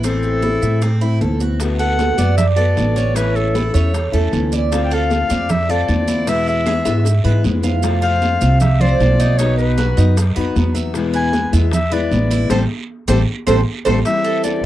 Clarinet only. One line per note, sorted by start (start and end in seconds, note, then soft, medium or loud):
0.07 1.18 A4 medium
1.79 2.34 F#5 loud
2.37 2.46 E5 medium
2.57 3.17 D5 medium
3.16 3.37 B4 medium
3.36 4.14 A4 medium
4.85 4.95 G5 medium
4.94 5.52 F5 loud
5.51 5.72 E5 medium
5.70 6.30 D5 medium
6.29 6.48 E5 loud
6.49 7.22 E5 medium
8.03 8.57 F5 loud
8.61 8.82 E5 medium
8.81 9.39 D5 loud
9.38 9.57 C#5 medium
9.58 10.32 B4 medium
11.16 11.51 G#5 loud
11.73 11.94 E5 medium
11.93 12.50 D5 medium
12.51 12.60 C5 medium
13.09 13.18 C5 medium
13.47 13.57 C5 medium
13.86 13.96 C5 medium
14.06 14.42 E5 loud
14.44 14.65 D5 medium